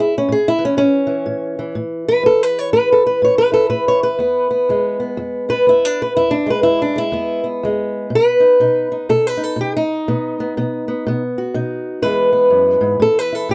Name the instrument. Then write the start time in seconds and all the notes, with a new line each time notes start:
steel-string acoustic guitar
Already playing: E2 G#3
0.00 E4
0.18 C#4
0.29 A2 G#4
0.48 E4
0.59 E3
0.65 C#4
0.77 A2 C#4
1.07 E3
1.26 A2
1.59 E3
1.75 A2
2.08 B4
2.23 A2 A4
2.43 B4
2.59 C#5
2.73 A2 B4
2.92 A4
3.07 B4
3.22 A2 C#5
3.38 B4
3.52 E4 A4
3.70 A2 B4
3.88 C#5
4.03 B4
4.19 E2 B3
4.51 B3
4.69 E2 G#3
5.00 B3
5.17 E2
5.49 B3 B4
5.67 E2 E4
5.85 D4
6.02 B4
6.17 E2 E4
6.31 D4
6.46 G#3
6.50 B4
6.63 E2 E4
6.82 D4
6.96 G#3 E4
7.12 E2 B3
7.44 B3
7.63 E2 G#3
8.10 B2
8.15 B4
8.40 D#4
8.60 B2 D#4
8.92 D#4
9.09 B2 A4
9.27 B4
9.37 D#4
9.44 A4
9.56 B2
9.61 G4
9.77 D#4
10.08 B2 B3
10.40 B3
10.57 B2 B3
10.88 B3
11.07 B2 B3
11.38 F#4
11.54 B2 D#4
12.02 E2 E3 G#3 B3 B4
12.33 B3
12.50 F#2
12.81 G#2
13.00 A2 A4
13.19 B4
13.32 E4 A4
13.49 A2 G4